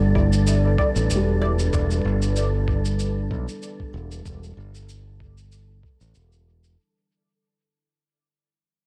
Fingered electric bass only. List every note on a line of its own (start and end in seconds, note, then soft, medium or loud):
0.00 0.76 G1 medium
0.96 1.08 A1 medium
1.10 1.70 E1 medium
1.73 2.01 E1 medium
2.05 3.28 G1 medium
3.31 3.46 B1 medium
3.94 4.22 E1 medium
4.26 4.54 E1 medium
4.57 5.81 G1 medium
6.01 6.13 A1 medium
6.15 6.75 E1 medium